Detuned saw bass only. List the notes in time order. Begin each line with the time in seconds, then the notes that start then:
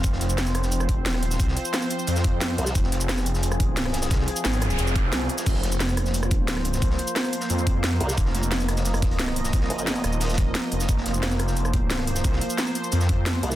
0.04 F1
0.99 E1
1.25 D#1
1.40 C2
2.07 F2
2.75 F1
4.11 C2
4.45 G#1
4.79 F1
5.13 C2
5.46 F1
6.43 D#1
6.82 C2
7.50 F2
8.18 F1
9.53 C2
10.04 D#1
10.72 F1
10.89 F1
12.24 C2
12.92 F2